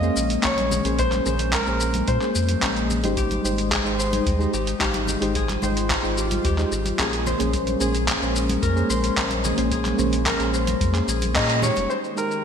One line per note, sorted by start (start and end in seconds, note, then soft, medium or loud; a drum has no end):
0.00 0.10 F2 loud
0.00 7.22 G#3 medium
0.00 3.13 A#3 medium
0.00 0.17 A#3 medium
0.00 3.13 C#4 medium
0.00 0.17 C#4 medium
0.00 0.17 G#4 medium
0.00 0.18 C5 medium
0.00 0.47 D#5 loud
0.00 shaker soft
0.17 0.38 A#1 medium
0.17 shaker medium
0.30 closed hi-hat soft
0.30 shaker soft
0.42 0.80 A#1 medium
0.42 0.81 A#3 medium
0.42 0.81 C#4 medium
0.42 0.81 G#4 medium
0.42 1.01 C#5 medium
0.42 0.82 D#5 medium
0.42 kick loud
0.42 clap loud
0.42 closed hi-hat soft
0.42 shaker soft
0.58 closed hi-hat soft
0.58 high conga medium
0.58 shaker soft
0.72 low conga medium
0.72 shaker medium
0.85 1.21 A#1 medium
0.85 1.23 A#3 medium
0.85 1.23 C#4 medium
0.85 1.23 G#4 medium
0.85 1.24 C5 loud
0.85 closed hi-hat soft
0.85 shaker soft
0.99 1.50 C5 medium
0.99 kick loud
0.99 closed hi-hat soft
0.99 shaker soft
1.12 clap soft
1.12 closed hi-hat soft
1.12 high conga medium
1.12 shaker soft
1.25 1.62 A#1 medium
1.25 1.63 A#3 medium
1.25 1.64 C#4 medium
1.25 1.64 G#4 medium
1.25 1.64 C5 loud
1.25 low conga medium
1.25 shaker medium
1.39 closed hi-hat soft
1.39 shaker soft
1.53 2.10 A#4 medium
1.53 kick loud
1.53 clap loud
1.53 closed hi-hat medium
1.53 shaker soft
1.66 2.03 A#1 medium
1.66 2.18 A#3 medium
1.66 2.18 C#4 medium
1.66 2.19 G#4 medium
1.66 2.19 C5 medium
1.66 shaker soft
1.80 shaker medium
1.94 closed hi-hat soft
1.94 high conga medium
1.94 shaker soft
2.08 2.18 A#2 loud
2.08 2.86 C5 medium
2.08 kick loud
2.08 closed hi-hat soft
2.08 shaker soft
2.21 2.35 A#3 medium
2.21 2.36 C#4 medium
2.21 2.36 G#4 medium
2.21 2.36 C5 medium
2.21 clap soft
2.21 shaker soft
2.35 2.56 F2 medium
2.35 shaker medium
2.49 closed hi-hat soft
2.49 high conga medium
2.49 shaker soft
2.62 3.05 A#1 medium
2.62 3.00 A#3 medium
2.62 3.00 C#4 medium
2.62 3.00 G#4 medium
2.62 3.01 D#5 medium
2.62 kick loud
2.62 clap medium
2.62 closed hi-hat medium
2.62 shaker soft
2.76 closed hi-hat soft
2.76 shaker soft
2.90 low conga medium
2.90 shaker medium
3.03 3.39 G#1 medium
3.03 3.41 G#3 medium
3.03 3.41 D#4 medium
3.03 3.42 G4 medium
3.03 3.42 C5 loud
3.03 closed hi-hat soft
3.03 high conga medium
3.03 shaker soft
3.17 5.33 D#4 medium
3.17 3.77 G4 medium
3.17 kick medium
3.17 closed hi-hat soft
3.17 shaker soft
3.31 closed hi-hat soft
3.31 high conga medium
3.31 shaker soft
3.43 3.80 G#1 medium
3.43 3.82 G#3 medium
3.43 3.82 D#4 medium
3.43 3.82 G4 medium
3.43 3.83 C5 medium
3.43 shaker medium
3.58 closed hi-hat soft
3.58 shaker soft
3.71 4.59 G#4 medium
3.71 kick loud
3.71 clap medium
3.71 closed hi-hat soft
3.71 shaker soft
3.84 4.21 G#1 medium
3.84 4.36 G#3 medium
3.84 4.37 D#4 medium
3.84 4.37 C5 medium
3.84 4.37 G5 medium
3.84 shaker soft
3.99 5.62 C5 medium
3.99 shaker medium
4.13 closed hi-hat soft
4.13 high conga medium
4.13 shaker soft
4.26 4.47 D#2 loud
4.26 kick loud
4.26 closed hi-hat soft
4.26 shaker soft
4.39 4.53 G#3 medium
4.39 4.54 D#4 medium
4.39 4.54 G4 medium
4.39 4.54 C5 medium
4.39 shaker soft
4.53 4.74 G#1 medium
4.53 4.80 G4 medium
4.53 shaker medium
4.67 closed hi-hat soft
4.67 shaker soft
4.79 5.16 G#1 medium
4.79 5.18 G#3 medium
4.79 5.18 D#4 medium
4.79 5.42 G4 loud
4.79 5.18 G4 medium
4.79 5.19 F5 medium
4.79 kick medium
4.79 clap medium
4.79 closed hi-hat medium
4.79 shaker soft
4.94 closed hi-hat soft
4.94 high conga medium
4.94 shaker soft
5.07 low conga medium
5.07 shaker medium
5.20 5.57 G#1 medium
5.20 5.59 G#3 medium
5.20 5.59 D#4 medium
5.20 5.59 G4 medium
5.20 5.60 C5 loud
5.20 closed hi-hat soft
5.20 shaker soft
5.35 7.25 F4 medium
5.35 6.24 G#4 medium
5.35 kick loud
5.35 closed hi-hat medium
5.35 shaker soft
5.49 clap soft
5.49 closed hi-hat soft
5.49 high conga medium
5.49 shaker soft
5.62 5.98 G#1 loud
5.62 6.00 G#3 medium
5.62 6.01 D#4 medium
5.62 7.26 C5 medium
5.62 6.01 C5 medium
5.62 6.01 G5 medium
5.62 low conga medium
5.62 shaker medium
5.77 closed hi-hat soft
5.77 shaker soft
5.90 kick loud
5.90 clap medium
5.90 closed hi-hat medium
5.90 shaker soft
6.03 6.39 G#1 medium
6.03 6.54 G#3 medium
6.03 6.55 D#4 medium
6.03 6.55 C5 medium
6.03 6.55 G5 medium
6.03 shaker soft
6.18 6.44 G4 medium
6.18 shaker medium
6.31 closed hi-hat soft
6.31 high conga medium
6.31 shaker soft
6.45 6.65 D#2 loud
6.45 7.05 G4 medium
6.45 kick loud
6.45 closed hi-hat medium
6.45 shaker soft
6.57 6.72 G#3 medium
6.57 6.72 D#4 medium
6.57 6.72 G4 medium
6.57 6.73 C5 medium
6.57 clap soft
6.57 shaker soft
6.72 6.92 G#1 medium
6.72 shaker medium
6.86 closed hi-hat soft
6.86 high conga medium
6.86 shaker soft
6.98 7.35 A#1 medium
6.98 7.36 A#3 medium
6.98 7.36 C#4 medium
6.98 7.37 G#4 medium
6.98 7.80 G#4 medium
6.98 7.37 D#5 medium
6.98 kick loud
6.98 clap medium
6.98 closed hi-hat soft
6.98 shaker soft
7.13 closed hi-hat soft
7.13 shaker soft
7.27 11.87 G#3 medium
7.27 11.86 A#3 medium
7.27 11.86 C#4 medium
7.27 8.89 C5 medium
7.27 low conga medium
7.27 shaker medium
7.38 7.76 A#1 medium
7.38 7.77 A#3 medium
7.38 7.77 C#4 medium
7.38 7.78 G#4 medium
7.38 7.78 C5 loud
7.38 closed hi-hat soft
7.38 high conga medium
7.38 shaker soft
7.53 kick loud
7.53 closed hi-hat medium
7.53 shaker soft
7.67 closed hi-hat soft
7.67 high conga medium
7.67 shaker soft
7.80 8.16 A#1 loud
7.80 8.18 A#3 medium
7.80 8.18 C#4 medium
7.80 8.18 G#4 medium
7.80 8.07 G#4 medium
7.80 8.19 C5 medium
7.80 shaker medium
7.95 closed hi-hat soft
7.95 shaker soft
8.08 9.44 G#4 medium
8.08 kick loud
8.08 clap loud
8.08 closed hi-hat medium
8.08 shaker soft
8.21 8.57 A#1 loud
8.21 8.73 A#3 medium
8.21 8.73 C#4 medium
8.21 8.73 G#4 medium
8.21 8.73 C5 medium
8.21 shaker soft
8.36 shaker medium
8.49 closed hi-hat soft
8.49 high conga medium
8.49 shaker soft
8.62 8.83 F2 loud
8.62 10.26 A#4 medium
8.62 kick loud
8.62 closed hi-hat medium
8.62 shaker soft
8.75 8.90 A#3 medium
8.75 8.90 C#4 medium
8.75 8.90 G#4 medium
8.75 8.91 C5 medium
8.75 shaker soft
8.90 9.10 A#1 medium
8.90 10.53 C5 medium
8.90 shaker medium
9.04 closed hi-hat soft
9.04 shaker soft
9.16 9.53 A#1 medium
9.16 9.54 A#3 medium
9.16 9.55 C#4 medium
9.16 9.55 G#4 medium
9.16 9.55 D#5 medium
9.16 kick loud
9.16 clap loud
9.16 closed hi-hat medium
9.16 shaker soft
9.31 closed hi-hat soft
9.31 high conga medium
9.31 shaker soft
9.44 9.71 G#4 medium
9.44 low conga medium
9.44 shaker medium
9.56 9.94 A#1 medium
9.56 9.95 A#3 medium
9.56 9.96 C#4 medium
9.56 9.96 G#4 medium
9.56 9.96 C5 loud
9.56 closed hi-hat soft
9.56 shaker soft
9.72 11.08 G#4 medium
9.72 kick loud
9.72 closed hi-hat medium
9.72 shaker soft
9.85 clap soft
9.85 closed hi-hat soft
9.85 high conga medium
9.85 shaker soft
9.98 10.35 A#1 loud
9.98 10.36 A#3 medium
9.98 10.36 C#4 medium
9.98 10.37 G#4 medium
9.98 10.37 C5 medium
9.98 low conga medium
9.98 shaker medium
10.13 closed hi-hat soft
10.13 shaker soft
10.26 12.38 A#4 medium
10.26 kick loud
10.26 clap medium
10.26 closed hi-hat medium
10.26 shaker soft
10.38 10.75 A#1 medium
10.38 10.91 A#3 medium
10.38 10.91 C#4 medium
10.38 10.91 G#4 medium
10.38 10.92 C5 medium
10.38 closed hi-hat soft
10.38 shaker soft
10.54 12.44 C5 medium
10.54 shaker medium
10.67 closed hi-hat soft
10.67 high conga medium
10.67 shaker soft
10.81 11.01 F2 loud
10.81 kick loud
10.81 closed hi-hat medium
10.81 shaker soft
10.93 11.08 A#3 medium
10.93 11.08 C#4 medium
10.93 11.08 G#4 medium
10.93 11.09 C5 medium
10.93 clap soft
10.93 closed hi-hat soft
10.93 shaker soft
11.08 11.37 A#1 medium
11.08 11.35 G#4 medium
11.08 shaker medium
11.22 closed hi-hat soft
11.22 high conga medium
11.22 shaker soft
11.34 11.71 A#2 medium
11.34 11.59 A#3 medium
11.34 11.59 C#4 medium
11.34 11.59 G#4 medium
11.34 12.44 G#4 loud
11.34 11.60 C5 medium
11.34 11.64 D#5 loud
11.34 kick loud
11.34 clap loud
11.34 closed hi-hat medium
11.34 shaker soft
11.50 closed hi-hat soft
11.50 shaker soft
11.61 12.13 G#3 medium
11.61 12.14 D#4 medium
11.61 12.14 G4 medium
11.61 11.88 C#5 medium
11.61 12.14 D#5 medium
11.61 low conga medium
11.61 shaker medium
11.76 11.87 F1 medium
11.76 closed hi-hat soft
11.76 high conga medium
11.76 shaker soft
11.90 12.44 D#3 medium
11.90 12.44 G#3 medium
11.90 11.96 C5 medium
11.90 12.44 C5 medium
11.90 12.44 G5 medium
11.90 shaker soft
12.04 shaker soft
12.15 12.44 G#3 medium
12.15 12.44 D#4 medium
12.15 12.44 G4 medium
12.15 12.44 A#4 medium
12.15 12.44 C5 medium
12.15 shaker medium
12.31 shaker soft